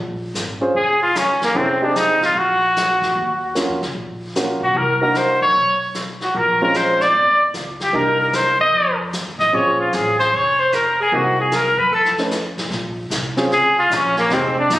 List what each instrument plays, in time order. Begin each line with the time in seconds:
Already playing: upright bass A#1
0.34 upright bass G#1, snare, hi-hat pedal
0.61 grand piano C#4 F4 G#4 C5
0.75 upright bass F1, trumpet G#4, alto saxophone G#4, brush sweep
1.02 alto saxophone F4, trumpet F4
1.15 alto saxophone C#4, trumpet C#4, snare, hi-hat pedal
1.41 alto saxophone A#3, trumpet A#3, muted upright bass stroke, snare
1.55 upright bass F1, trumpet C4, alto saxophone C4, grand piano C#4 E4 G#4 A4, brush sweep
1.82 grand piano C4 D#4 G4 G#4, alto saxophone D4, trumpet D4
1.95 alto saxophone D#4, trumpet D#4, snare, hi-hat pedal
2.21 upright bass A1, alto saxophone F4, trumpet F4, snare
2.35 upright bass A#1, alto saxophone F#4, trumpet F#4, brush sweep
2.76 snare, hi-hat pedal
3.02 kick, snare
3.15 upright bass D#2, brush sweep
3.55 grand piano A#3 C#4 F4 F#4, snare, hi-hat pedal
3.69 upright bass F2
3.82 upright bass C#2, snare
3.95 upright bass A#1, brush sweep
4.36 grand piano A#3 C#4 F4 F#4, snare, hi-hat pedal
4.60 upright bass B1, alto saxophone F#4, trumpet F#4
4.74 upright bass C2, alto saxophone A#4, trumpet A#4, brush sweep
5.01 grand piano A#3 D4 D#4 F#4, alto saxophone A#4, trumpet A#4
5.14 alto saxophone C5, trumpet C5, snare, hi-hat pedal
5.41 upright bass F#2, alto saxophone C#5, trumpet C#5
5.54 upright bass B1, brush sweep
5.94 snare, hi-hat pedal
6.21 trumpet F#4, alto saxophone F#4, snare
6.35 upright bass A#1, alto saxophone A#4, trumpet A#4, brush sweep
6.61 grand piano G#3 C4 C#4 F4, alto saxophone A#4, trumpet A#4
6.74 alto saxophone C5, trumpet C5, snare, hi-hat pedal
7.01 alto saxophone D5, trumpet D5, snare
7.13 upright bass G1, brush sweep
7.54 upright bass C#2, snare, hi-hat pedal
7.80 alto saxophone G4, trumpet G4, snare
7.93 upright bass C2, grand piano A#3 D4 D#4 G4, alto saxophone A#4, trumpet A#4, brush sweep
8.21 alto saxophone A#4, trumpet A#4
8.33 alto saxophone C5, trumpet C5, snare, hi-hat pedal
8.59 upright bass E2, alto saxophone D#5, trumpet D#5
8.72 upright bass F2, brush sweep
9.13 snare, hi-hat pedal
9.25 upright bass D#2
9.39 upright bass A1, alto saxophone D#5, trumpet D#5, kick, snare
9.52 upright bass A#1, grand piano C4 C#4 F4 G#4, alto saxophone C#5, trumpet C#5, brush sweep
9.80 alto saxophone F4, trumpet F4
9.92 upright bass A1, alto saxophone G#4, trumpet G#4, snare, hi-hat pedal
10.19 alto saxophone C5, trumpet C5, snare
10.33 upright bass F1, alto saxophone C#5, trumpet C#5, brush sweep
10.58 alto saxophone C5, trumpet C5
10.72 alto saxophone A#4, trumpet A#4, snare, hi-hat pedal
11.00 alto saxophone G#4, trumpet G#4
11.12 upright bass C2, grand piano A#3 C4 D#4 F#4, alto saxophone F#4, trumpet F#4, brush sweep
11.39 alto saxophone G#4, trumpet G#4
11.51 alto saxophone A#4, snare, hi-hat pedal
11.56 trumpet A#4
11.77 upright bass F#2, alto saxophone B4, trumpet B4
11.91 upright bass F2, alto saxophone A4, trumpet A4, brush sweep
12.05 snare
12.18 grand piano A3 C#4 D#4 B4, snare
12.31 snare, hi-hat pedal
12.57 upright bass A1, snare
12.70 upright bass A#1, brush sweep, snare
13.10 upright bass C2, snare, hi-hat pedal
13.37 grand piano C4 C#4 F4 G#4, snare
13.51 upright bass C#2, alto saxophone G#4, trumpet G#4, brush sweep, snare
13.78 alto saxophone F4, trumpet F4
13.90 upright bass A#1, alto saxophone C#4, snare, hi-hat pedal
13.94 trumpet C#4
14.17 alto saxophone A#3, trumpet A#3, snare
14.30 upright bass F1, grand piano G#3 C4 D#4 G4, alto saxophone C4, trumpet C4, brush sweep, snare
14.57 alto saxophone D4, trumpet D4
14.70 upright bass G1, alto saxophone D#4, trumpet D#4, snare, hi-hat pedal